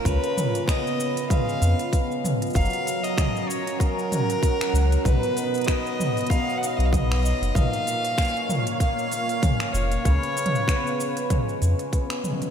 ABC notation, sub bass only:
X:1
M:4/4
L:1/16
Q:"Swing 16ths" 1/4=96
K:Dbmix
V:1 name="Sub bass" clef=bass
D,, z8 z F,, z4 z | G,,, z12 z D,, z | C,, z8 z2 C,,4 G,,, | B,,, z12 z F,,, z |
D,, z8 z F,, z4 z |]